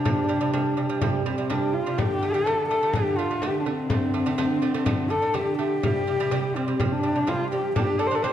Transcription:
Already playing: horsehead fiddle D4
0.05 lute C3 G3, frame drum
0.29 lute C3 G3, frame drum
0.41 lute C3 G3
0.54 lute C3 G3, frame drum
0.77 lute C3 G3, frame drum
0.89 lute C3 G3
1.01 lute C3 G3, frame drum
1.26 lute C3 G3, horsehead fiddle C4, frame drum
1.38 lute C3 G3
1.50 lute C3 G3, horsehead fiddle D4, frame drum
1.73 horsehead fiddle F4, frame drum
1.86 lute C3 G3
1.98 lute D3 A3, horsehead fiddle G4, frame drum
2.22 lute D3 A3, frame drum
2.32 lute D3 A3, horsehead fiddle A4
2.46 lute D3 A3, frame drum
2.69 lute D3 A3, horsehead fiddle A4, frame drum
2.83 lute D3 A3
2.93 lute D3 A3, horsehead fiddle G4, frame drum
3.17 lute D3 A3, horsehead fiddle F4
3.30 lute D3 A3
3.42 lute D3 A3, horsehead fiddle G4, frame drum
3.60 horsehead fiddle D4
3.66 lute D3 A3, horsehead fiddle C4, frame drum
3.90 lute D3 A3, frame drum
4.14 lute D3 A3, frame drum
4.26 lute D3 A3
4.38 lute D3 A3, frame drum
4.62 lute D3 A3, frame drum
4.74 lute D3 A3
4.86 lute D3 A3, frame drum
5.10 lute D3 A3, horsehead fiddle A4
5.22 lute D3 A3
5.34 lute D3 A3, horsehead fiddle G4, frame drum
5.58 lute D3 A3, horsehead fiddle G4, frame drum
5.83 lute C3 G3, frame drum
6.07 lute C3 G3, frame drum
6.20 lute C3 G3
6.31 lute C3 G3, frame drum
6.55 lute C3 G3, horsehead fiddle C4, frame drum
6.68 lute C3 G3
6.80 lute C3 G3, frame drum
6.92 horsehead fiddle D4
7.03 lute C3 G3
7.16 lute C3 G3
7.27 lute C3 G3, horsehead fiddle F4, frame drum
7.51 lute C3 G3, horsehead fiddle G4, frame drum
7.76 lute G3 D4, horsehead fiddle G4, frame drum
7.99 lute G3 D4, horsehead fiddle A4, frame drum
8.07 lute G3, horsehead fiddle C5
8.12 lute D4, horsehead fiddle A4
8.23 lute G3 D4, horsehead fiddle C5, frame drum

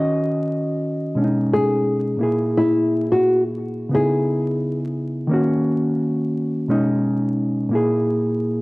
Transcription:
Already playing: reed electric piano D#3 C#4 F#4 D#5
1.15 reed electric piano B2 G#3 C#4 D4
1.24 reed electric piano D#4
1.54 nylon-string guitar G#4
2.17 reed electric piano A#2 A#3
2.21 reed electric piano E4 G#4
2.58 nylon-string guitar E4
3.12 nylon-string guitar F#4
3.89 reed electric piano C#3 B3 D#4
3.95 reed electric piano E4, nylon-string guitar G#4
5.27 reed electric piano D#3 A#3
5.31 reed electric piano C#4 F#4
6.68 reed electric piano B2 G#3 C#4 D#4
7.69 reed electric piano A#2 A#3 E4
7.75 reed electric piano G#4

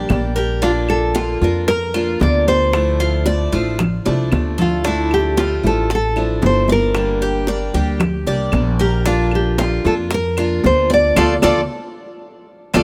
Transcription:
Already playing: cuban tres D5
0.09 upright bass A#1, steel-string acoustic guitar G3 A#3 D4 G4, high bongo, low bongo, high conga, claves
0.36 nylon-string guitar G4, cuban tres A#4, high bongo, high conga
0.62 steel-string acoustic guitar D3 A#3 D4 F4, cuban tres D4, nylon-string guitar F4, high bongo, high conga
0.89 nylon-string guitar A4, high conga, claves
1.15 steel-string acoustic guitar D3 A#3 D4 F4, cuban tres F4, high bongo, high conga
1.42 upright bass F2, steel-string acoustic guitar A#3 D4 F4, nylon-string guitar A#4, high conga
1.68 cuban tres A#4, nylon-string guitar A#4, muted steel-string acoustic guitar stroke, high bongo, high conga
1.94 steel-string acoustic guitar A#3 D4 F4, cuban tres F4, high bongo, high conga, claves
2.20 upright bass D2, steel-string acoustic guitar D3 A#3 D4 F4, nylon-string guitar D5, high bongo, low bongo, high conga
2.48 nylon-string guitar C5, cuban tres D5, high bongo, high conga
2.73 steel-string acoustic guitar D3 F3 A3 D4 E4, high bongo, high conga, claves
3.00 cuban tres F4, high conga
3.26 steel-string acoustic guitar F3 A3 D4 E4, cuban tres D5, high bongo, high conga
3.52 upright bass A1, steel-string acoustic guitar F3 A3 D4 E4, cuban tres F4, high conga
3.79 muted steel-string acoustic guitar stroke, high bongo, high conga, low conga, claves
4.05 upright bass C2, steel-string acoustic guitar F3 A3 D4 E4, cuban tres D5, high bongo, high conga
4.32 upright bass D2, steel-string acoustic guitar F3 A3 D4 E4, high bongo, low bongo, high conga, claves
4.58 nylon-string guitar F4, cuban tres A4, high bongo, low conga
4.84 steel-string acoustic guitar D3 F3 A3 D4 E4, cuban tres D4, nylon-string guitar E4, high bongo, high conga
5.11 nylon-string guitar G4, high conga, claves
5.37 steel-string acoustic guitar F3 A3 D4 E4, cuban tres F4, high bongo, high conga
5.64 upright bass A1, steel-string acoustic guitar F3 A3 D4 E4, nylon-string guitar A4, high conga
5.90 cuban tres A4, muted steel-string acoustic guitar stroke, high bongo, high conga
5.95 nylon-string guitar A4
6.16 steel-string acoustic guitar F3 A3 D4 E4, high bongo, high conga, claves
6.42 upright bass G1, steel-string acoustic guitar F3 A3 D4 E4, high bongo, low bongo, high conga
6.46 nylon-string guitar C5
6.68 cuban tres D5, high bongo, high conga
6.72 nylon-string guitar A#4
6.95 steel-string acoustic guitar D3 G3 A#3 D4 G4, high bongo, high conga, claves
7.21 cuban tres G4, high conga
7.47 steel-string acoustic guitar G3 A#3 D4 G4, cuban tres D5, high bongo, high conga
7.74 upright bass D2, steel-string acoustic guitar G3 A#3 D4 G4, cuban tres G4, high conga
8.00 muted steel-string acoustic guitar stroke, high bongo, high conga, low conga, claves
8.27 upright bass C2, steel-string acoustic guitar G3 A#3 D4 G4, cuban tres D5, high bongo, high conga
8.52 upright bass A#1, steel-string acoustic guitar G3 A#3 D4 G4, high bongo, low bongo, high conga, claves
8.79 nylon-string guitar G4, cuban tres A#4, high bongo, high conga
9.05 steel-string acoustic guitar D3 A#3 D4 F4, cuban tres D4, nylon-string guitar F4, high bongo, high conga
9.31 nylon-string guitar G4, high conga, claves
9.58 steel-string acoustic guitar D3 A#3 D4 F4, cuban tres F4, high bongo, high conga
9.85 upright bass F2, steel-string acoustic guitar A#3 D4 F4, nylon-string guitar A4, high conga
10.11 cuban tres A#4, nylon-string guitar A#4, muted steel-string acoustic guitar stroke, high bongo, high conga
10.37 steel-string acoustic guitar A#3 D4 F4, cuban tres F4, high bongo, high conga, claves
10.64 upright bass D2, steel-string acoustic guitar D3 A#3 D4 F4, nylon-string guitar C5, high bongo, low bongo, high conga
10.90 cuban tres D5, nylon-string guitar D5, high bongo, high conga
11.16 upright bass D2, steel-string acoustic guitar F3 A3 D4, cuban tres F4 A4 D5, nylon-string guitar F4 A4 D5, low bongo, high conga, claves
11.42 upright bass D2, steel-string acoustic guitar F3 A3 D4, cuban tres F4 A4 D5, nylon-string guitar F4 A4 D5, low bongo, high conga, claves
12.74 upright bass D2, steel-string acoustic guitar F3 A3 D4, cuban tres F4 A4 D5, nylon-string guitar F4 A4 D5, low bongo, high conga, claves

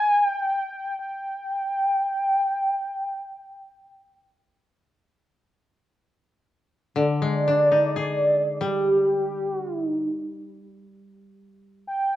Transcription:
Already playing: soft synth lead G#5
0.26 soft synth lead G5
0.99 soft synth lead G5
6.96 koto D3, soft synth lead D5
7.22 koto G#3
7.48 koto D4
7.72 koto D#4
7.96 koto G#4
8.61 koto G3, soft synth lead G4
9.53 soft synth lead F#4
9.65 soft synth lead F4
9.77 soft synth lead E4
9.89 soft synth lead D#4
11.87 soft synth lead G5

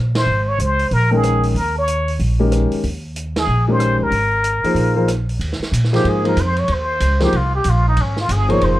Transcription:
Already playing: upright bass A#2
0.15 muted trumpet C5, snare, ride
0.26 upright bass G#1
0.48 muted trumpet C#5
0.59 upright bass C#2, muted trumpet C5, closed hi-hat
0.79 open hi-hat
0.91 upright bass A#1, muted trumpet A#4, open hi-hat
1.11 grand piano D#3 G#3 C#4 A#4 G5, muted trumpet G#4
1.23 cross-stick, closed hi-hat
1.43 open hi-hat
1.55 upright bass D#2, muted trumpet A#4, open hi-hat
1.78 muted trumpet C#5
1.88 closed hi-hat
2.08 open hi-hat
2.19 upright bass A#1, open hi-hat
2.39 grand piano D#3 G#3 C#4 G4 A#4
2.52 cross-stick, closed hi-hat
2.72 open hi-hat
2.84 upright bass D#2, open hi-hat
3.16 closed hi-hat
3.36 muted trumpet G#4, snare, ride
3.47 upright bass A#1
3.68 grand piano D#3 G#3 C#4 G4 A#4, muted trumpet C5
3.80 cross-stick, closed hi-hat
3.99 upright bass D2, muted trumpet A#4
4.11 upright bass G#1, open hi-hat
4.44 closed hi-hat
4.64 grand piano F3 A#3 D#4 G#4 C5, muted upright bass stroke, open hi-hat
4.74 upright bass A#1, open hi-hat
4.95 grand piano F3 A#3 D#4 G#4 C5
5.08 cross-stick, closed hi-hat
5.29 open hi-hat
5.39 upright bass D#2, ride
5.52 snare
5.59 muted upright bass stroke, snare
5.72 upright bass A#2, hi-hat pedal, ride
5.84 snare
5.92 grand piano F3 A#3 D#4 G#4 C5, muted trumpet G4, snare, ride
6.04 upright bass G#2, muted trumpet G#4, ride
6.23 grand piano F3 A#3 D#4 G#4 C5, ride
6.27 muted trumpet A#4
6.36 upright bass F2, muted trumpet C5, hi-hat pedal, ride
6.57 muted trumpet C#5, ride
6.68 upright bass D#2, ride
6.72 muted trumpet C5
7.00 upright bass C#2, hi-hat pedal, ride
7.20 grand piano F3 A#3 D#4 G#4 C5, muted trumpet G4, snare, ride
7.33 upright bass C2, muted trumpet F4, ride
7.55 muted trumpet G4
7.64 upright bass A#1, hi-hat pedal, ride
7.69 muted trumpet F4
7.88 muted trumpet D#4
7.97 upright bass G#1, ride
8.01 muted trumpet C#4
8.17 muted trumpet F4, snare
8.29 upright bass G1, muted trumpet G#4, hi-hat pedal, ride
8.48 grand piano F3 A#3 D#4 G#4 C5, muted trumpet C#5, ride
8.61 upright bass F1, muted trumpet C5, ride

